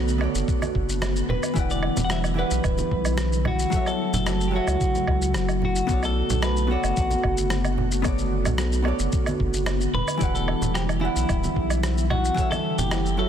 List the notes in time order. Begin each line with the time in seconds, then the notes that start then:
Already playing: B1 D3 A3 B3 F#4 A4 C#5 D5
0.08 shaker
0.18 B3 F#4 A4 C#5, low woodblock
0.23 D5
0.35 F#1, shaker
0.48 kick, shaker
0.62 high conga, low woodblock, shaker
0.75 F#1, kick
0.89 shaker
1.02 cross-stick, low woodblock, shaker
1.16 shaker
1.29 E1 G3 E4 B4, low conga
1.43 low woodblock, shaker
1.54 E1 E3 E4 G4 D5, kick, shaker
1.59 F#5
1.70 D5, shaker
1.83 low woodblock
1.97 E1, low conga, shaker
2.04 F#5
2.10 E5, cross-stick, shaker
2.24 low woodblock, shaker
2.34 E3 E4 G4
2.38 B4 D5 F#5
2.51 B1, shaker
2.64 D1, kick, low woodblock, shaker
2.78 high conga, shaker
2.91 B1, kick
3.05 low woodblock, shaker
3.18 cross-stick, shaker
3.33 shaker
3.45 F#4, low conga, low woodblock
3.59 shaker
3.70 C#3 F#3 A3 F#4 A4, kick, shaker
3.74 C#5 E5
3.86 A4, low woodblock, shaker
4.13 F#1 A4, low conga, shaker
4.26 cross-stick, low woodblock, shaker
4.41 shaker
4.48 F#3 G4
4.52 F#4 A4 C#5
4.56 E5
4.68 C#2, low woodblock, shaker
4.81 kick, shaker
4.95 high conga, shaker
5.07 C#2, kick, low woodblock
5.22 shaker
5.34 F#1, cross-stick, shaker
5.49 low woodblock, shaker
5.62 F#4, low conga
5.76 shaker
5.87 B1 D3 B3 F#4 A4 C#5, kick, shaker
5.92 D5
6.03 A4, low woodblock, shaker
6.30 B1, low conga, shaker
6.42 B4, cross-stick, low woodblock, shaker
6.57 shaker
6.67 B3 F#4 A4 C#5
6.71 F#4 D5
6.84 F#1, low woodblock, shaker
6.97 A1, kick, shaker
7.11 high conga, shaker
7.23 F#1, kick, low woodblock
7.38 shaker
7.50 cross-stick, shaker
7.65 low woodblock, shaker
7.78 low conga
7.92 shaker
8.02 B3 F#4 A4 C#5, kick, low woodblock, shaker
8.07 D5
8.18 shaker
8.45 B1, low conga, low woodblock, shaker
8.58 cross-stick, shaker
8.72 shaker
8.82 B3 F#4 A4, low woodblock
8.87 C#5 D5
8.99 F#1, shaker
9.12 kick, shaker
9.26 high conga, low woodblock, shaker
9.40 F#1, kick
9.54 shaker
9.66 cross-stick, low woodblock, shaker
9.81 shaker
9.93 E1 G3 E4 B4, low conga
10.08 low woodblock, shaker
10.17 E1 E3 E4 G4, kick, shaker
10.22 D5 F#5
10.35 A4, shaker
10.48 low woodblock
10.62 E1, low conga, shaker
10.74 G4, cross-stick, shaker
10.89 low woodblock, shaker
11.00 E3 E4 G4 D5
11.05 F#5
11.16 B1, shaker
11.29 D1, kick, low woodblock, shaker
11.44 high conga, shaker
11.56 B1, kick
11.70 low woodblock, shaker
11.83 cross-stick, shaker
11.98 shaker
12.10 F#4, low conga, low woodblock
12.25 shaker
12.34 C#3 E3 A3 A4 F#5, kick, shaker
12.38 C#5 E5
12.51 A4, high conga, low woodblock, shaker
12.78 F#1 G4, low conga, shaker
12.91 cross-stick, low woodblock, shaker
13.06 shaker
13.17 F#3 F#4 A4 C#5 E5